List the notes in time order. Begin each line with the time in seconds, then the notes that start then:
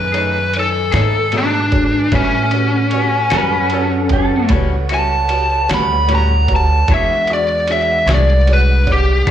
Already playing: F#2 D#3 B4 G#5
0.12 A3 D#4 G#4 A4 C#5, ride
0.54 D#4 A4 C#5 G#5, ride
0.59 A4
0.92 G#2 A3 D#4 G#4 A4 C#5 G#5, snare, ride
1.32 B2 A3 D#4 F#4 G#4 A4 C#5, ride
1.38 D4
1.71 F#4 G#4 A4 C#5, kick, ride
2.12 A2 G3 C#4 F#4 G4 A4 B4 C#5 E5, kick, ride
2.51 F#4 G4 A4 B4 C#5 F#5, ride
2.91 F#4 G4 B4 C#5, ride
3.30 F#2 G3 C#4 F#4 G4 B4 C#5, snare, ride
3.70 F#4 G4 A4 B4 C#5, ride
4.09 F#4 G4 A4 B4 C#5, kick, ride
4.49 C#2 A2 G3 C#4 F#4 G4 B4 C#5, kick, ride
4.89 G3 C#4 F#4 G4 B4 E5, ride
4.94 A5
5.29 F#4 G4 B4 C#5, ride
5.69 D2 C#4 F#4 G4 B4 C#5, snare, ride
5.73 G3 B5
6.08 A2 G3 C#4 F#4 G4 B4 C#5, ride
6.12 F#4 A#5
6.48 F#4 G4 B4 C#5, kick, ride
6.56 A5
6.88 E2 E3 G#3 D4 F#4 G#4 B4 C#5 F#5, kick, ride
6.92 G#4 E5
7.27 D4 F#4 G#4 C#6, ride
7.33 D5
7.68 D4 F#4 G#4 C#5, ride
7.72 E5
8.06 C2 D4 F#4 G#4 C#5 C#6, snare, ride
8.11 D4 D5
8.47 D4 F#4 G#4 C#5, ride
8.53 B4
8.86 G#3 D4 C#5 F#5, kick, ride
8.92 G4
9.27 C#2 E3 D4, kick, ride